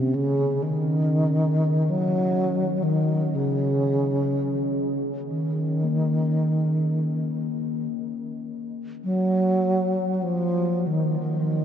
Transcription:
0.00 0.16 C3 medium
0.00 0.15 A#3 soft
0.00 6.26 C#4 soft
0.14 0.64 C#3 medium
0.63 1.91 D#3 medium
1.89 2.84 F#3 medium
2.83 3.37 D#3 medium
3.35 5.03 C#3 medium
5.29 7.85 D#3 medium
5.84 11.65 A#3 soft
9.04 10.14 F#3 medium
10.14 10.24 F#3 medium
10.22 10.88 F3 medium
10.87 11.19 D#3 medium
11.20 11.65 D#3 medium

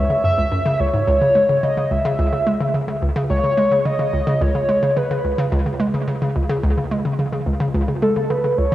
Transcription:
0.00 0.24 E5 loud
0.10 0.15 C#3 medium
0.24 0.31 F#2 medium
0.24 0.81 E5 loud
0.38 0.45 C#2 medium
0.52 0.59 F#2 medium
0.66 0.77 C#3 loud
0.80 0.87 C#2 medium
0.80 1.07 C#5 loud
0.94 1.01 G#2 medium
1.08 1.19 C#2 loud
1.08 1.65 C#5 loud
1.21 1.26 C#3 medium
1.35 1.46 G#3 medium
1.49 1.60 C#3 medium
1.63 1.68 C#3 medium
1.63 1.93 D#5 loud
1.77 1.85 C#3 medium
1.91 1.98 C#2 medium
1.91 3.02 E5 loud
2.05 2.12 C#3 loud
2.19 2.30 C#2 loud
2.33 2.37 C#3 medium
2.47 2.58 G#3 medium
2.60 2.71 C#3 medium
2.74 2.79 C#3 medium
2.88 2.96 C#3 medium
3.02 3.09 C#2 medium
3.16 3.23 C#3 loud
3.30 3.41 C#2 loud
3.30 3.87 C#5 loud
3.44 3.48 C#3 medium
3.57 3.69 G#3 medium
3.72 3.83 C#3 medium
3.85 3.90 C#3 medium
3.85 4.43 D#5 loud
3.99 4.07 C#3 medium
4.13 4.21 C#2 medium
4.27 4.34 C#3 loud
4.41 4.52 C#2 loud
4.41 4.98 C#5 loud
4.55 4.59 C#3 medium
4.69 4.80 G#3 medium
4.83 4.94 C#3 medium
4.97 5.01 C#3 medium
4.97 5.38 B4 medium
5.11 5.18 C#3 medium
5.24 5.32 C#2 medium
5.38 5.46 C#3 loud
5.52 5.63 C#2 loud
5.66 5.70 C#3 medium
5.80 5.91 G#3 medium
5.94 6.05 C#3 medium
6.08 6.12 C#3 medium
6.22 6.29 C#3 medium
6.36 6.43 C#2 medium
6.49 6.57 C#3 loud
6.63 6.74 C#2 loud
6.77 6.82 C#3 medium
6.91 7.02 G#3 medium
7.05 7.16 C#3 medium
7.19 7.23 C#3 medium
7.32 7.40 C#3 medium
7.46 7.54 C#2 medium
7.60 7.68 C#3 loud
7.74 7.85 C#2 loud
7.88 7.93 C#3 medium
8.02 8.13 G#3 medium
8.02 8.31 A4 medium
8.16 8.27 C#3 medium
8.30 8.34 C#3 medium
8.30 8.59 B4 medium
8.44 8.51 C#3 medium
8.58 8.65 C#2 medium
8.58 8.75 C#5 loud

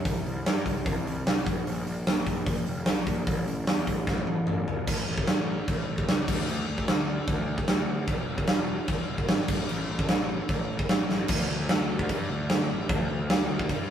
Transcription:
0.05 0.23 C2 medium
0.05 kick loud
0.05 open hi-hat medium
0.25 0.42 C2 medium
0.25 open hi-hat medium
0.46 0.63 G2 medium
0.46 snare loud
0.46 open hi-hat medium
0.66 0.83 C2 medium
0.66 kick medium
0.66 open hi-hat medium
0.86 1.03 C2 medium
0.86 kick loud
0.86 open hi-hat medium
1.05 1.22 C2 medium
1.05 open hi-hat medium
1.26 1.43 C2 medium
1.26 snare loud
1.26 open hi-hat medium
1.46 1.63 A#1 medium
1.46 kick loud
1.46 open hi-hat medium
1.67 1.84 A#1 medium
1.67 open hi-hat medium
1.86 2.03 A#1 medium
1.86 open hi-hat medium
2.07 2.24 A#1 loud
2.07 snare loud
2.07 open hi-hat medium
2.26 2.44 A#1 medium
2.26 kick medium
2.26 open hi-hat medium
2.46 2.64 A#1 medium
2.46 kick loud
2.46 open hi-hat medium
2.66 2.84 F1 medium
2.66 open hi-hat medium
2.86 3.04 A#1 loud
2.86 snare loud
2.86 open hi-hat medium
3.07 3.24 A#1 medium
3.07 kick medium
3.07 open hi-hat medium
3.27 3.44 A1 medium
3.27 kick loud
3.27 open hi-hat medium
3.47 3.64 A1 medium
3.47 open hi-hat medium
3.67 3.85 E2 loud
3.67 snare loud
3.67 open hi-hat medium
3.87 4.05 A1 medium
3.87 kick medium
3.87 open hi-hat medium
4.07 4.24 A1 medium
4.07 kick loud
4.07 snare medium
4.27 4.45 A1 medium
4.27 high tom medium
4.47 4.65 A1 medium
4.47 mid tom medium
4.68 4.85 E1 medium
4.68 floor tom medium
4.87 5.03 A1 medium
4.87 kick loud
4.87 crash loud
4.87 crash medium
5.08 5.23 A1 medium
5.18 kick medium
5.27 5.58 A1 medium
5.27 snare loud
5.27 crash medium
5.68 5.83 A1 medium
5.68 kick loud
5.68 crash medium
5.88 6.03 A1 medium
5.98 kick medium
6.08 6.23 C#2 medium
6.08 snare loud
6.08 crash medium
6.28 6.43 D2 medium
6.28 kick loud
6.28 crash loud
6.48 6.63 D2 medium
6.48 crash medium
6.69 6.84 D2 medium
6.78 kick medium
6.88 7.19 D2 loud
6.88 snare loud
6.88 crash medium
7.27 7.58 D2 medium
7.27 kick loud
7.27 crash medium
7.58 kick medium
7.68 7.84 D2 loud
7.68 snare loud
7.68 crash medium
7.88 8.04 D2 loud
8.07 8.23 E1 loud
8.07 kick loud
8.07 crash medium
8.29 8.44 E1 loud
8.38 kick medium
8.47 8.79 E1 loud
8.47 snare loud
8.47 crash medium
8.88 9.04 E1 medium
8.88 kick loud
8.88 crash medium
9.10 9.25 E1 medium
9.18 kick medium
9.28 9.45 G#1 loud
9.28 snare loud
9.28 crash medium
9.48 9.64 A1 loud
9.48 kick loud
9.48 crash loud
9.69 9.85 A1 loud
9.69 crash medium
9.90 10.05 A1 medium
9.99 kick loud
10.08 10.40 A1 loud
10.08 snare loud
10.08 crash medium
10.49 10.79 A1 medium
10.49 kick loud
10.49 crash medium
10.79 kick medium
10.89 11.05 A1 loud
10.89 snare loud
10.89 crash medium
11.09 11.25 A1 loud
11.09 snare medium
11.28 11.48 D2 medium
11.28 kick loud
11.28 crash loud
11.28 crash medium
11.50 11.68 D2 medium
11.69 11.89 D2 loud
11.69 snare loud
11.69 crash medium
11.90 12.09 D2 medium
11.99 kick medium
12.09 12.29 G2 medium
12.09 kick medium
12.09 crash medium
12.30 12.49 D2 medium
12.49 12.69 D2 medium
12.49 snare loud
12.49 crash medium
12.71 12.89 A1 medium
12.89 13.08 D2 loud
12.89 kick loud
12.89 crash medium
13.10 13.29 D2 loud
13.30 13.49 D2 loud
13.30 snare loud
13.30 crash medium
13.50 13.69 D2 medium
13.59 kick medium
13.69 13.89 G2 loud
13.69 kick loud
13.69 crash medium

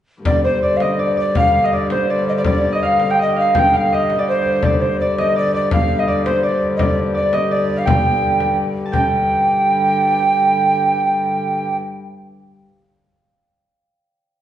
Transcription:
0.22 4.63 G2 medium
0.22 4.63 D3 medium
0.22 0.62 D5 medium
0.22 0.43 D5 medium
0.22 frame drum medium
0.43 1.91 C5 medium
0.43 0.61 C5 medium
0.43 frame drum soft
0.63 0.88 D5 medium
0.63 0.78 D5 medium
0.77 0.84 F5 medium
0.77 frame drum medium
0.82 1.05 D#5 medium
0.82 1.01 D#5 medium
0.99 1.17 D5 medium
0.99 1.18 D5 medium
1.17 1.70 D5 medium
1.17 1.36 D5 medium
1.17 frame drum soft
1.35 2.82 F5 medium
1.35 1.67 F5 medium
1.35 frame drum medium
1.54 frame drum soft
1.64 1.79 D#5 medium
1.64 1.74 D#5 medium
1.73 2.10 D5 medium
1.73 1.90 D5 medium
1.90 2.12 C5 medium
1.90 3.90 C5 medium
1.90 frame drum medium
2.10 2.38 D5 medium
2.10 2.28 D5 medium
2.26 2.33 D#5 medium
2.26 frame drum soft
2.37 2.44 D5 medium
2.37 2.46 D5 medium
2.45 2.77 D5 medium
2.45 2.79 D5 medium
2.45 frame drum medium
2.63 frame drum soft
2.73 3.19 D#5 medium
2.73 2.82 D#5 medium
2.83 3.36 F5 medium
2.83 3.12 F5 medium
3.00 frame drum medium
3.10 3.54 G5 medium
3.10 3.19 G5 medium
3.19 3.92 D#5 medium
3.19 3.37 D#5 medium
3.36 3.73 F5 medium
3.36 3.60 F5 medium
3.36 frame drum soft
3.55 5.10 G5 medium
3.55 frame drum medium
3.59 3.78 G5 medium
3.73 5.40 F5 medium
3.73 3.96 F5 medium
3.73 frame drum soft
3.92 4.25 D#5 medium
3.92 4.21 D#5 medium
3.92 frame drum soft
4.10 frame drum soft
4.19 4.41 D5 medium
4.19 4.28 D5 medium
4.28 4.48 C5 medium
4.28 4.65 C5 medium
4.42 4.65 D5 soft
4.42 frame drum soft
4.48 6.26 C5 medium
4.63 8.91 G2 medium
4.63 8.91 D3 medium
4.63 4.83 D5 medium
4.63 5.01 D5 medium
4.63 frame drum medium
4.82 4.99 C5 medium
4.82 frame drum soft
5.00 5.17 D5 medium
5.00 5.24 D5 medium
5.18 5.42 D#5 medium
5.18 5.35 D#5 medium
5.18 frame drum medium
5.36 5.54 D5 medium
5.54 6.05 D5 medium
5.54 5.72 D5 medium
5.54 frame drum soft
5.71 7.39 F5 medium
5.71 6.01 F5 medium
5.71 frame drum medium
5.90 frame drum soft
5.99 6.07 D#5 medium
5.99 6.14 D#5 medium
6.08 6.43 D5 medium
6.08 6.25 D5 medium
6.25 6.43 C5 medium
6.25 8.24 C5 medium
6.25 frame drum medium
6.43 6.79 D5 medium
6.43 6.69 D5 medium
6.63 frame drum soft
6.76 7.14 D5 medium
6.76 6.84 D#5 medium
6.76 frame drum medium
6.83 6.99 D5 medium
6.98 frame drum soft
7.14 7.40 D5 medium
7.14 7.36 D5 medium
7.33 7.57 D#5 medium
7.33 7.54 D#5 medium
7.33 frame drum medium
7.51 9.36 D5 medium
7.51 7.80 D5 medium
7.70 frame drum soft
7.77 9.43 F5 medium
7.77 7.88 F5 medium
7.86 8.92 G5 medium
7.86 8.57 G5 medium
7.86 frame drum medium
8.06 frame drum soft
8.40 frame drum medium
8.76 frame drum soft
8.86 10.30 A5 medium
8.91 11.79 G2 medium
8.91 11.79 D3 medium
8.91 12.46 G5 medium
8.91 11.77 G5 medium
8.91 frame drum medium

